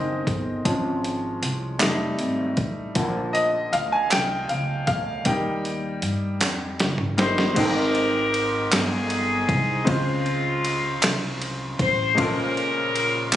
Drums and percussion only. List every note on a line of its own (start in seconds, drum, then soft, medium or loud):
0.27 kick medium
0.27 closed hi-hat soft
0.65 kick medium
0.65 closed hi-hat medium
1.04 closed hi-hat soft
1.43 closed hi-hat medium
1.80 snare loud
1.80 clap medium
1.80 closed hi-hat medium
2.19 closed hi-hat soft
2.57 kick medium
2.57 closed hi-hat soft
2.95 kick loud
2.95 closed hi-hat medium
3.35 closed hi-hat soft
3.73 closed hi-hat medium
4.11 snare loud
4.11 clap medium
4.11 closed hi-hat medium
4.49 closed hi-hat soft
4.87 kick medium
4.87 closed hi-hat medium
5.25 kick loud
5.25 closed hi-hat medium
5.65 closed hi-hat soft
6.02 closed hi-hat medium
6.41 snare medium
6.41 clap medium
6.41 closed hi-hat medium
6.80 snare medium
6.80 closed hi-hat medium
6.98 mid tom medium
7.18 snare loud
7.18 closed hi-hat medium
7.38 snare medium
7.56 kick loud
7.56 crash medium
7.56 ride medium
7.95 ride soft
8.34 ride soft
8.72 snare loud
8.72 clap medium
8.72 ride medium
9.10 ride soft
9.49 kick loud
9.49 ride soft
9.87 kick loud
9.87 ride medium
10.26 ride soft
10.65 ride medium
11.03 snare loud
11.03 clap medium
11.03 ride medium
11.42 ride soft
11.79 kick loud
11.79 ride soft
12.18 kick loud
12.18 ride medium
12.57 ride soft
12.96 ride soft
13.33 clap loud